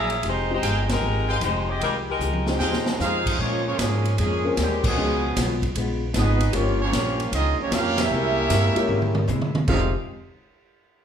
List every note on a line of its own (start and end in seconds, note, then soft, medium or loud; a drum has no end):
0.00 0.21 A#1 medium
0.00 0.11 F#3 medium
0.00 0.11 A#3 medium
0.00 0.23 C#4 medium
0.00 0.12 E4 medium
0.00 0.12 G#4 medium
0.00 0.23 G#4 medium
0.00 0.20 A#4 loud
0.00 0.23 A#4 medium
0.00 0.20 E5 medium
0.00 0.23 E5 loud
0.00 0.20 F#5 medium
0.00 0.20 A#5 loud
0.10 ride medium
0.22 0.61 F1 medium
0.22 0.50 F3 soft
0.22 0.50 G#3 soft
0.22 0.51 D#4 medium
0.22 0.51 G4 medium
0.22 kick soft
0.22 ride medium
0.28 0.52 G#3 loud
0.28 0.52 D#4 medium
0.28 0.52 G4 medium
0.28 0.52 C5 loud
0.50 0.61 G#3 medium
0.50 0.61 C4 medium
0.50 0.61 D#4 soft
0.50 0.88 D#4 medium
0.50 0.61 F4 medium
0.50 0.62 G4 medium
0.50 0.88 G4 medium
0.54 0.88 G#3 medium
0.54 0.88 C5 loud
0.61 1.00 G1 medium
0.61 0.89 F3 medium
0.61 0.90 G#3 medium
0.61 0.90 D#4 medium
0.61 0.91 G4 medium
0.61 0.80 G#4 medium
0.61 0.80 D#5 medium
0.61 0.80 F5 medium
0.61 0.80 G5 loud
0.61 kick soft
0.61 hi-hat pedal medium
0.61 ride medium
0.89 1.27 G#3 medium
0.89 1.27 D#4 medium
0.89 1.27 G4 medium
0.89 1.27 A#4 loud
0.89 snare medium
0.89 ride medium
1.01 1.40 G#1 medium
1.01 1.29 F3 medium
1.01 1.30 G#3 medium
1.01 1.30 D#4 medium
1.01 1.30 G4 medium
1.27 1.41 G#3 medium
1.27 1.40 D#4 medium
1.27 1.41 G4 medium
1.27 1.36 G#4 medium
1.27 1.41 C5 medium
1.27 1.36 D#5 medium
1.27 1.37 F5 medium
1.27 1.36 G5 loud
1.40 1.79 F1 loud
1.40 1.68 F3 medium
1.40 1.69 G#3 medium
1.40 1.67 G#3 medium
1.40 1.69 D#4 medium
1.40 1.67 D#4 medium
1.40 1.69 G4 medium
1.40 1.67 G4 medium
1.40 1.67 C5 loud
1.40 kick soft
1.40 hi-hat pedal medium
1.40 ride medium
1.69 1.81 C4 medium
1.69 1.82 G4 medium
1.69 1.82 G#4 medium
1.69 1.81 D#5 medium
1.80 2.19 C2 medium
1.80 2.08 F3 medium
1.80 1.94 G3 medium
1.80 2.09 G#3 soft
1.80 1.94 C4 medium
1.80 2.09 D#4 medium
1.80 1.94 D#4 medium
1.80 1.98 G#4 medium
1.80 1.94 A#4 medium
1.80 1.98 D#5 medium
1.80 1.98 F5 medium
1.80 1.98 G5 medium
1.80 kick soft
1.80 ride medium
1.84 2.10 G4 medium
2.10 2.45 G#3 medium
2.10 2.45 D#4 medium
2.10 2.45 G4 medium
2.10 2.45 A#4 medium
2.19 2.58 C#2 medium
2.19 2.47 F3 medium
2.19 2.48 G#3 medium
2.19 2.48 D#4 medium
2.19 2.49 G4 medium
2.19 hi-hat pedal medium
2.33 high tom medium
2.46 3.25 D#3 medium
2.46 2.98 G#3 medium
2.46 2.96 G#3 medium
2.46 3.26 G#3 medium
2.46 2.97 C4 medium
2.46 2.97 D#4 medium
2.46 3.26 D#4 medium
2.46 2.97 F4 medium
2.46 2.97 G4 medium
2.46 3.26 G4 medium
2.46 3.26 C5 medium
2.46 snare medium
2.59 2.97 D#2 medium
2.59 2.87 F3 soft
2.59 2.88 G#3 medium
2.59 2.88 D#4 medium
2.59 2.89 G4 medium
2.59 2.77 G#4 medium
2.59 2.77 D#5 medium
2.59 2.77 F5 medium
2.59 2.77 G5 loud
2.59 snare medium
2.73 snare medium
2.86 snare medium
2.98 3.37 F2 medium
2.98 3.26 F3 medium
2.98 3.36 G#3 medium
2.98 3.27 G#3 medium
2.98 3.35 C4 medium
2.98 3.27 D#4 medium
2.98 3.37 D#4 medium
2.98 3.35 F4 loud
2.98 3.28 G4 medium
2.98 3.37 C5 medium
2.98 3.37 F5 loud
2.98 snare medium
2.98 hi-hat pedal medium
3.02 3.37 G#4 medium
3.26 kick medium
3.26 crash medium
3.37 3.76 A#2 medium
3.37 3.67 A#2 soft
3.37 3.64 F3 medium
3.37 3.64 G#3 medium
3.37 3.64 C#4 medium
3.41 3.67 G#3 soft
3.41 3.66 A#3 medium
3.41 3.67 C#4 medium
3.41 3.66 F4 medium
3.41 3.68 F4 medium
3.41 3.65 G#4 loud
3.41 3.66 C#5 loud
3.65 3.77 F3 medium
3.65 3.77 G#3 medium
3.65 3.78 A#3 medium
3.65 3.77 C#4 medium
3.65 3.78 F4 medium
3.65 3.77 G#4 medium
3.65 3.78 C#5 loud
3.78 4.16 G#2 medium
3.78 4.06 A#2 medium
3.78 4.17 C#3 medium
3.78 4.17 F3 medium
3.78 4.17 G#3 medium
3.78 4.07 G#3 medium
3.78 4.18 A#3 medium
3.78 4.17 C#4 medium
3.78 4.07 C#4 medium
3.78 4.07 F4 medium
3.78 4.17 G#4 loud
3.78 kick soft
3.78 snare medium
3.78 hi-hat pedal medium
3.78 ride medium
4.05 ride medium
4.18 4.56 F2 medium
4.18 4.45 A#2 medium
4.18 4.55 C#3 medium
4.18 4.54 F3 medium
4.18 4.55 G#3 medium
4.18 4.46 G#3 medium
4.18 4.55 A#3 medium
4.18 4.54 C#4 medium
4.18 4.46 C#4 medium
4.18 4.55 G#4 medium
4.18 kick soft
4.18 ride medium
4.22 4.47 F4 medium
4.45 4.94 A#3 medium
4.45 4.94 C4 medium
4.45 4.94 C#4 medium
4.45 4.94 F4 medium
4.45 4.94 G#4 medium
4.57 4.95 D#2 medium
4.57 4.84 A#2 medium
4.57 4.83 G3 medium
4.57 4.85 G#3 medium
4.57 4.85 C#4 medium
4.57 4.86 F4 medium
4.57 kick soft
4.57 snare medium
4.57 hi-hat pedal medium
4.57 ride medium
4.61 4.85 G#3 medium
4.61 4.85 C4 medium
4.61 4.85 G4 medium
4.84 5.59 B2 medium
4.84 5.59 F3 medium
4.84 5.59 G#3 medium
4.84 5.59 B3 medium
4.84 5.60 C#4 medium
4.84 5.60 G#4 medium
4.84 kick loud
4.84 crash medium
4.97 5.34 C#2 medium
4.97 5.24 C#3 medium
4.97 5.20 G#3 medium
4.97 5.24 G#3 medium
4.97 5.20 B3 medium
4.97 5.25 B3 medium
4.97 5.20 C#4 medium
4.97 5.20 D#4 medium
4.97 5.20 F4 medium
4.97 5.25 F4 medium
5.35 5.74 B1 loud
5.35 5.62 C#3 medium
5.35 5.63 G#3 medium
5.35 5.63 B3 medium
5.35 5.64 F4 medium
5.35 kick soft
5.35 snare medium
5.35 hi-hat pedal medium
5.35 ride medium
5.62 kick medium
5.62 ride soft
5.75 6.13 A#1 medium
5.75 6.03 C#3 medium
5.75 6.03 G#3 medium
5.75 6.04 B3 medium
5.75 kick soft
5.75 ride medium
5.79 6.04 F4 medium
6.13 6.52 G#1 loud
6.13 6.41 C#3 medium
6.13 6.42 G#3 medium
6.13 6.51 G#3 medium
6.13 6.42 B3 medium
6.13 6.52 B3 medium
6.13 6.52 C#4 medium
6.13 6.51 D#4 medium
6.13 6.42 F4 medium
6.13 6.52 G#4 medium
6.13 6.52 B4 medium
6.13 6.52 D#5 medium
6.13 kick soft
6.13 snare medium
6.13 hi-hat pedal medium
6.13 ride medium
6.40 ride medium
6.52 6.91 G1 medium
6.52 6.80 G2 medium
6.52 6.81 F3 medium
6.52 6.78 F3 medium
6.52 6.76 G3 medium
6.52 6.77 A#3 medium
6.52 6.81 A#3 medium
6.52 6.79 A#3 medium
6.52 6.80 A#3 medium
6.52 6.77 C#4 medium
6.52 6.79 C#4 medium
6.52 6.82 C#4 medium
6.52 6.77 F4 medium
6.52 6.80 F4 medium
6.52 6.77 G4 medium
6.52 6.80 G4 medium
6.52 6.80 C#5 loud
6.52 kick soft
6.52 ride medium
6.79 7.28 F3 medium
6.79 7.29 A#3 medium
6.79 7.30 A#3 medium
6.79 7.28 C#4 medium
6.79 7.30 F4 medium
6.79 7.29 G4 medium
6.79 7.29 C#5 loud
6.91 7.31 A#1 medium
6.91 7.19 G2 medium
6.91 7.20 F3 medium
6.91 7.20 A#3 medium
6.91 7.21 C#4 medium
6.91 kick soft
6.91 snare medium
6.91 hi-hat pedal medium
6.91 ride medium
7.20 ride medium
7.31 7.56 C#2 medium
7.31 7.59 G2 medium
7.31 7.60 F3 medium
7.31 7.60 A#3 medium
7.31 7.57 C4 medium
7.31 7.61 C#4 medium
7.31 7.57 D#4 medium
7.31 7.57 F4 medium
7.31 7.58 G#4 medium
7.31 7.57 D#5 loud
7.31 kick soft
7.31 ride medium
7.59 7.72 F3 medium
7.59 7.71 A#3 medium
7.59 7.73 A#3 medium
7.59 7.71 C#4 medium
7.59 7.73 F4 medium
7.59 7.72 G4 medium
7.59 7.73 C#5 loud
7.71 8.09 F2 loud
7.71 7.99 G2 medium
7.71 7.99 F3 medium
7.71 7.97 A#3 loud
7.71 7.99 A#3 medium
7.71 7.98 C#4 loud
7.71 8.00 C#4 medium
7.71 7.98 C#4 loud
7.71 7.98 F4 medium
7.71 7.98 G4 loud
7.71 7.99 A#4 medium
7.71 7.98 F5 loud
7.71 kick soft
7.71 snare medium
7.71 hi-hat pedal medium
7.71 ride medium
7.98 9.29 G3 loud
7.98 9.29 A#3 loud
7.98 9.30 C#4 loud
7.98 9.29 E4 loud
7.98 9.30 G4 medium
7.98 9.30 A#4 loud
7.98 9.30 E5 loud
7.98 snare loud
7.98 ride medium
8.10 8.48 C2 medium
8.10 8.38 C3 soft
8.10 8.39 G#3 soft
8.10 8.39 A#3 medium
8.10 8.39 E4 medium
8.49 8.74 G2 medium
8.49 8.77 C3 medium
8.49 8.78 G#3 medium
8.49 8.78 A#3 medium
8.49 8.78 E4 medium
8.49 kick soft
8.49 snare medium
8.49 hi-hat pedal medium
8.49 ride medium
8.75 9.25 G#3 medium
8.75 9.25 A#3 medium
8.75 9.26 C#4 medium
8.75 9.26 E4 medium
8.75 9.26 G4 medium
8.75 muted upright bass stroke soft
8.75 ride medium
8.87 9.26 G#2 medium
8.87 9.16 C3 medium
8.87 9.17 G#3 medium
8.87 9.17 A#3 medium
8.87 9.18 E4 medium
8.87 mid tom medium
9.02 mid tom medium
9.15 mid tom medium
9.28 9.56 C3 medium
9.28 9.66 C3 loud
9.28 9.56 G#3 medium
9.28 9.57 A#3 medium
9.28 9.57 E4 medium
9.28 hi-hat pedal medium
9.28 mid tom medium
9.42 mid tom medium
9.55 mid tom loud
9.66 9.92 F1 loud
9.66 9.91 F2 loud
9.66 9.92 C3 medium
9.66 9.92 D#3 medium
9.66 9.89 F3 medium
9.66 9.92 G#3 medium
9.66 9.89 G#3 medium
9.66 9.92 C4 medium
9.66 9.92 D#4 medium
9.66 9.90 D#4 medium
9.66 9.92 F4 medium
9.66 9.92 G4 medium
9.66 9.93 G#4 medium
9.66 9.92 C5 medium
9.66 9.93 F5 loud
9.66 kick loud
9.66 crash medium
9.71 9.90 G4 medium